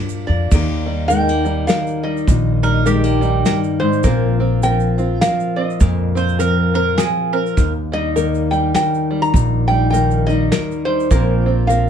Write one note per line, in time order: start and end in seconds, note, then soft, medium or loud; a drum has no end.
0.00 0.25 G2 medium
0.00 0.51 A#2 medium
0.00 0.27 A#3 soft
0.00 0.49 D4 medium
0.00 0.52 F4 medium
0.00 0.24 D5 medium
0.09 shaker medium
0.27 0.49 F2 medium
0.27 0.49 A#3 medium
0.27 0.82 D5 medium
0.51 1.65 D#2 loud
0.51 2.27 D#2 medium
0.51 1.10 D#3 medium
0.51 1.10 A#3 medium
0.51 0.87 D#4 medium
0.51 2.27 G4 medium
0.51 kick medium
0.51 crash medium
0.51 shaker medium
0.86 1.43 G3 medium
0.86 1.46 D#4 medium
1.08 1.68 D#3 medium
1.08 1.29 G#3 medium
1.08 1.69 A#4 medium
1.08 1.70 G5 loud
1.08 closed hi-hat soft
1.08 shaker medium
1.28 2.28 A#3 medium
1.28 shaker soft
1.44 2.03 G3 medium
1.44 2.25 D#4 medium
1.44 shaker soft
1.67 2.85 D#3 medium
1.67 2.86 A#4 medium
1.67 2.04 F5 loud
1.67 snare medium
1.67 closed hi-hat medium
1.67 shaker medium
1.87 shaker soft
2.03 2.62 G3 medium
2.03 3.18 D#5 medium
2.17 shaker soft
2.28 3.42 A#1 loud
2.28 3.45 D#2 medium
2.28 kick medium
2.28 closed hi-hat medium
2.28 shaker medium
2.63 3.20 G3 medium
2.63 3.22 D#4 medium
2.63 2.87 A#4 loud
2.85 4.04 D#3 medium
2.85 3.04 G#3 medium
2.85 3.59 G4 medium
2.85 3.45 A#4 medium
2.85 closed hi-hat soft
2.85 shaker medium
3.04 4.04 A#3 medium
3.04 shaker soft
3.21 3.79 G3 medium
3.21 4.02 D#4 medium
3.21 shaker soft
3.45 3.81 G2 medium
3.45 4.43 A#4 medium
3.45 snare medium
3.45 closed hi-hat medium
3.45 shaker medium
3.64 shaker soft
3.80 4.05 G#2 medium
3.80 4.11 G3 medium
3.80 4.35 C5 medium
3.92 shaker soft
4.03 5.18 A#1 loud
4.03 5.80 A#2 medium
4.03 4.63 F3 medium
4.03 5.80 A#3 medium
4.03 4.63 C4 medium
4.03 4.40 F4 medium
4.03 6.43 A#4 medium
4.03 kick medium
4.03 closed hi-hat soft
4.03 shaker medium
4.40 4.97 C4 medium
4.40 4.98 F4 medium
4.63 5.21 F3 medium
4.63 5.78 C4 medium
4.63 5.21 A#4 medium
4.63 5.21 G5 medium
4.63 closed hi-hat soft
4.63 shaker medium
4.80 shaker soft
4.98 5.56 C4 medium
4.98 5.78 F4 medium
4.98 shaker soft
5.21 5.78 F3 medium
5.21 6.39 A#4 medium
5.21 5.58 F5 loud
5.21 snare medium
5.21 closed hi-hat medium
5.21 shaker medium
5.40 shaker soft
5.56 6.14 C4 medium
5.56 6.71 D#5 medium
5.70 shaker soft
5.80 6.95 F2 loud
5.80 7.58 A#2 medium
5.80 7.58 A#3 medium
5.80 kick medium
5.80 closed hi-hat soft
5.80 shaker medium
6.15 6.73 C4 medium
6.15 6.74 F4 medium
6.15 6.39 C5 loud
6.15 shaker soft
6.28 shaker soft
6.39 6.97 F3 medium
6.39 7.55 C4 medium
6.39 6.98 A#4 medium
6.39 6.74 A#4 medium
6.39 closed hi-hat soft
6.39 shaker medium
6.74 7.32 C4 medium
6.74 7.55 F4 medium
6.74 6.99 A#4 medium
6.98 7.54 F3 medium
6.98 7.35 G#4 medium
6.98 8.16 A#4 medium
6.98 snare medium
6.98 closed hi-hat medium
6.98 shaker medium
7.33 7.64 C4 medium
7.33 7.72 A#4 medium
7.46 shaker soft
7.57 9.34 D#2 medium
7.57 8.71 D#2 loud
7.57 kick medium
7.57 closed hi-hat soft
7.57 shaker medium
7.92 8.50 G3 medium
7.92 8.52 D#4 medium
7.92 8.54 D#5 medium
8.16 8.75 D#3 medium
8.16 9.93 A#3 medium
8.16 8.75 A#4 medium
8.16 closed hi-hat soft
8.16 shaker medium
8.34 shaker soft
8.51 9.09 G3 medium
8.51 9.32 D#4 medium
8.51 8.73 G5 medium
8.51 shaker soft
8.74 9.92 D#3 medium
8.74 9.93 A#4 medium
8.74 9.24 G5 medium
8.74 snare medium
8.74 closed hi-hat medium
8.74 shaker medium
8.94 shaker soft
9.11 9.68 G3 medium
9.22 9.66 A#5 loud
9.22 shaker soft
9.34 10.48 A#1 loud
9.34 11.11 D#2 medium
9.34 kick medium
9.34 closed hi-hat soft
9.34 shaker medium
9.68 10.27 G3 medium
9.68 10.28 D#4 medium
9.68 9.89 G5 medium
9.90 10.50 D#3 medium
9.90 11.13 A#3 medium
9.90 10.52 A#4 medium
9.90 10.25 G5 medium
9.90 closed hi-hat soft
9.90 shaker medium
10.11 shaker soft
10.27 10.86 G3 medium
10.27 11.09 D#4 medium
10.27 10.88 D#5 medium
10.27 shaker soft
10.52 11.11 D#3 medium
10.52 11.49 A#4 medium
10.52 snare medium
10.52 closed hi-hat medium
10.52 shaker loud
10.71 shaker soft
10.85 11.18 G3 medium
10.85 11.71 C5 medium
11.00 shaker soft
11.10 11.90 A#1 loud
11.10 11.90 A#2 medium
11.10 11.70 F3 medium
11.10 11.90 A#3 medium
11.10 11.71 C4 medium
11.10 11.48 F4 medium
11.10 11.90 A#4 medium
11.10 kick medium
11.10 closed hi-hat medium
11.10 shaker medium
11.46 11.90 C4 medium
11.46 11.90 F4 medium
11.67 11.90 F3 medium
11.67 11.90 C4 medium
11.67 11.90 A#4 medium
11.67 11.90 F5 medium
11.67 closed hi-hat soft
11.67 shaker medium